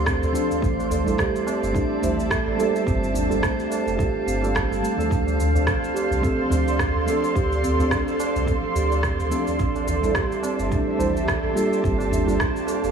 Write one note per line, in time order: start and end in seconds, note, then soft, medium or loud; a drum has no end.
0.00 0.18 D2 medium
0.00 0.30 F3 medium
0.00 0.30 A3 medium
0.00 0.31 C4 medium
0.00 0.32 D4 medium
0.00 0.32 A4 medium
0.00 0.58 A4 medium
0.00 12.91 C5 medium
0.00 0.58 D5 medium
0.00 0.58 F5 medium
0.00 0.58 C6 medium
0.06 0.15 C4 medium
0.06 kick loud
0.06 cross-stick medium
0.06 cabasa soft
0.23 0.33 D2 loud
0.23 cabasa soft
0.32 0.49 F3 medium
0.32 0.49 A3 medium
0.32 0.50 C4 medium
0.32 0.50 D4 medium
0.32 0.61 D4 loud
0.32 0.50 A4 loud
0.32 cabasa medium
0.50 tabla tin soft
0.50 tabla ge medium
0.50 cabasa soft
0.62 1.02 A1 loud
0.62 0.71 A3 medium
0.62 5.07 G4 medium
0.62 2.84 D5 medium
0.62 2.84 E5 medium
0.62 5.07 A5 medium
0.62 kick loud
0.62 cabasa soft
0.78 tabla na medium
0.78 tabla tin soft
0.78 cabasa soft
0.90 1.05 A4 medium
0.90 tabla ge medium
0.90 cabasa medium
1.04 1.17 A1 medium
1.04 1.70 G3 medium
1.04 1.71 A3 medium
1.04 1.71 D4 medium
1.04 1.72 E4 medium
1.04 1.18 A4 medium
1.04 tabla na soft
1.04 tabla tin medium
1.04 cabasa soft
1.08 1.72 A4 medium
1.18 1.27 G4 medium
1.18 kick loud
1.18 cross-stick medium
1.18 cabasa soft
1.36 cabasa soft
1.46 1.55 C4 medium
1.46 tabla na medium
1.46 cabasa medium
1.63 1.73 G1 medium
1.63 cabasa soft
1.72 1.98 G3 medium
1.72 1.99 A3 medium
1.72 1.99 D4 medium
1.72 2.01 D4 medium
1.72 1.99 E4 medium
1.72 2.00 A4 loud
1.72 kick loud
1.72 tabla na soft
1.72 cabasa soft
1.91 tabla tin soft
2.02 2.43 A1 medium
2.02 2.12 G3 medium
2.02 2.12 A3 medium
2.02 2.11 A3 medium
2.02 2.12 D4 medium
2.02 2.13 E4 medium
2.02 2.13 C5 loud
2.02 tabla ge medium
2.02 cabasa medium
2.20 cabasa soft
2.30 2.45 A4 medium
2.30 kick loud
2.30 cross-stick loud
2.30 cabasa soft
2.46 2.57 A1 medium
2.46 2.58 A4 medium
2.55 3.25 G3 medium
2.55 3.25 A#3 medium
2.55 3.26 D4 medium
2.55 3.27 F4 medium
2.55 2.68 G4 medium
2.59 3.27 A4 medium
2.59 tabla tin medium
2.59 cabasa medium
2.76 cabasa soft
2.86 3.26 G1 loud
2.86 2.96 C4 medium
2.86 9.56 F5 medium
2.86 kick loud
2.86 cabasa soft
3.03 tabla tin soft
3.03 cabasa soft
3.14 3.41 D4 loud
3.14 tabla ge medium
3.14 cabasa medium
3.28 3.41 G1 medium
3.28 3.42 G3 medium
3.28 3.42 A#3 medium
3.28 3.42 D4 medium
3.28 3.42 F4 medium
3.28 3.43 A4 medium
3.28 tabla tin medium
3.28 cabasa soft
3.43 3.52 A3 loud
3.43 kick loud
3.43 cross-stick medium
3.43 cabasa soft
3.60 cabasa soft
3.70 3.85 A4 medium
3.70 tabla na medium
3.70 cabasa medium
3.86 3.97 F1 medium
3.86 3.98 A4 medium
3.86 cabasa soft
3.97 4.39 G3 medium
3.97 4.39 D4 medium
3.97 4.39 F4 medium
3.97 4.08 G4 medium
3.97 4.40 A4 medium
3.97 kick loud
3.97 cabasa soft
4.27 4.67 G1 loud
4.27 4.36 C4 medium
4.27 cabasa medium
4.41 4.66 G3 medium
4.41 4.66 A#3 medium
4.41 4.67 D4 medium
4.41 4.67 F4 medium
4.41 4.67 A4 medium
4.41 tabla na medium
4.41 tabla tin medium
4.41 cabasa soft
4.55 4.81 D4 medium
4.55 kick loud
4.55 cross-stick loud
4.55 cabasa soft
4.69 4.81 G1 loud
4.69 4.94 G3 medium
4.69 4.94 A#3 medium
4.69 4.94 D4 medium
4.69 4.95 F4 medium
4.69 4.95 A4 medium
4.69 cabasa soft
4.83 4.92 A3 medium
4.83 cabasa medium
4.97 5.50 F3 medium
4.97 5.50 A3 medium
4.97 5.50 C4 medium
4.97 5.51 D4 medium
4.97 5.51 A4 loud
4.97 tabla tin soft
4.97 tabla ge medium
4.97 cabasa soft
5.10 5.51 D2 loud
5.10 5.37 D4 loud
5.10 9.56 A4 medium
5.10 11.80 D5 medium
5.10 9.56 C6 medium
5.10 kick loud
5.10 cabasa soft
5.27 tabla na medium
5.27 tabla tin soft
5.27 cabasa soft
5.39 5.66 D4 medium
5.39 tabla ge medium
5.39 cabasa medium
5.52 5.65 D2 medium
5.52 6.18 F3 medium
5.52 6.19 A3 medium
5.52 6.20 C4 medium
5.52 6.20 D4 medium
5.52 tabla na soft
5.52 tabla tin medium
5.56 6.21 A4 medium
5.56 cabasa soft
5.67 5.81 A4 medium
5.67 kick loud
5.67 cross-stick medium
5.67 cabasa soft
5.83 5.94 A4 medium
5.83 cabasa soft
5.94 6.04 G4 medium
5.94 tabla na medium
5.94 cabasa medium
6.11 6.21 C2 medium
6.11 cabasa soft
6.21 6.47 F3 medium
6.21 6.47 A3 medium
6.21 6.48 C4 medium
6.21 6.32 C4 medium
6.21 6.48 D4 medium
6.21 6.48 A4 medium
6.21 kick medium
6.21 tabla na soft
6.21 cabasa soft
6.39 tabla tin medium
6.50 6.91 D2 medium
6.50 6.60 F3 medium
6.50 6.61 A3 medium
6.50 6.61 C4 medium
6.50 6.77 D4 loud
6.50 6.61 D4 medium
6.50 6.61 C5 loud
6.50 tabla ge loud
6.50 cabasa medium
6.68 cabasa soft
6.79 kick loud
6.79 cross-stick medium
6.79 cabasa soft
6.95 7.05 D2 medium
7.06 7.75 F3 medium
7.06 7.75 A3 medium
7.06 7.75 C4 medium
7.06 7.76 D4 medium
7.06 7.21 A4 medium
7.06 7.77 A4 loud
7.06 tabla tin medium
7.06 cabasa medium
7.23 7.34 A4 medium
7.23 cabasa soft
7.35 7.75 D2 loud
7.35 7.44 G4 medium
7.35 kick loud
7.35 cabasa soft
7.51 tabla tin soft
7.51 cabasa soft
7.63 7.72 C4 medium
7.63 tabla ge medium
7.63 cabasa medium
7.78 7.89 D2 medium
7.78 7.91 F3 medium
7.78 7.91 A3 medium
7.78 7.92 C4 medium
7.78 7.92 D4 medium
7.78 7.92 A4 medium
7.78 tabla tin medium
7.78 cabasa soft
7.91 8.18 D4 loud
7.91 kick medium
7.91 cross-stick medium
7.91 cabasa soft
8.08 cabasa soft
8.19 8.46 D4 medium
8.19 tabla na medium
8.19 cabasa medium
8.36 8.46 C2 medium
8.36 cabasa soft
8.45 9.27 F3 medium
8.45 9.28 A3 medium
8.45 9.28 C4 medium
8.45 9.29 D4 medium
8.45 8.62 A4 medium
8.45 kick medium
8.45 cabasa soft
8.49 9.29 A4 medium
8.63 8.75 A4 medium
8.75 9.15 D2 loud
8.75 8.84 G4 medium
8.75 cabasa medium
8.92 tabla na medium
8.92 tabla tin medium
8.92 cabasa soft
9.03 kick loud
9.03 cross-stick medium
9.03 cabasa soft
9.19 9.29 D2 medium
9.19 cabasa soft
9.30 9.47 F3 loud
9.30 9.47 A3 medium
9.30 9.47 C4 medium
9.30 9.47 D4 medium
9.30 9.58 D4 medium
9.30 9.48 A4 medium
9.30 cabasa medium
9.47 tabla tin soft
9.47 tabla ge medium
9.47 cabasa soft
9.59 9.99 A1 loud
9.59 9.86 D4 medium
9.59 12.91 G4 medium
9.59 11.82 E5 medium
9.59 12.91 A5 medium
9.59 kick medium
9.59 cabasa soft
9.75 tabla na soft
9.75 tabla tin soft
9.75 cabasa soft
9.87 10.02 A4 medium
9.87 tabla ge medium
9.87 cabasa medium
10.01 10.13 A1 medium
10.01 10.68 G3 medium
10.01 10.68 A3 medium
10.01 10.69 D4 medium
10.01 10.69 E4 medium
10.01 10.15 A4 medium
10.01 10.70 A4 medium
10.01 tabla na soft
10.01 tabla tin medium
10.01 cabasa soft
10.15 10.25 G4 medium
10.15 kick medium
10.15 cross-stick medium
10.15 cabasa soft
10.32 cabasa soft
10.43 10.53 C4 medium
10.43 tabla na medium
10.43 cabasa medium
10.59 10.69 G1 medium
10.59 cabasa soft
10.70 10.96 G3 medium
10.70 10.96 A3 medium
10.70 10.97 D4 medium
10.70 10.98 D4 loud
10.70 10.97 E4 medium
10.70 10.97 A4 loud
10.70 kick medium
10.70 tabla na soft
10.70 cabasa soft
10.87 tabla tin soft
10.97 11.39 A1 medium
10.97 11.09 G3 medium
10.97 11.09 A3 medium
10.97 11.09 D4 medium
10.97 11.26 D4 medium
10.97 11.09 E4 medium
10.97 11.09 C5 loud
10.97 tabla ge medium
10.97 cabasa medium
11.17 cabasa soft
11.28 11.42 A4 medium
11.28 kick loud
11.28 cross-stick medium
11.28 cabasa soft
11.43 11.54 A1 loud
11.43 11.55 A4 medium
11.53 12.23 G3 medium
11.53 12.23 A#3 medium
11.53 12.24 D4 medium
11.53 12.24 F4 medium
11.53 11.65 G4 medium
11.53 12.25 A4 loud
11.53 tabla tin medium
11.53 cabasa medium
11.73 cabasa soft
11.83 12.24 G1 loud
11.83 12.91 A#3 medium
11.83 11.93 C4 medium
11.83 12.91 F5 medium
11.83 kick loud
11.83 cabasa soft
11.98 tabla na medium
11.98 tabla tin soft
11.98 cabasa soft
12.11 12.38 D4 loud
12.11 tabla ge medium
12.11 cabasa medium
12.26 12.38 G1 medium
12.26 12.39 G3 medium
12.26 12.39 A#3 medium
12.26 12.40 D4 medium
12.26 12.40 F4 medium
12.26 12.40 A4 loud
12.26 tabla na soft
12.26 tabla tin medium
12.26 cabasa soft
12.40 kick loud
12.40 cross-stick medium
12.40 cabasa soft
12.56 cabasa soft
12.67 12.83 A4 medium
12.67 tabla na medium
12.67 cabasa medium
12.83 12.91 F1 medium
12.83 12.91 A4 medium
12.83 cabasa soft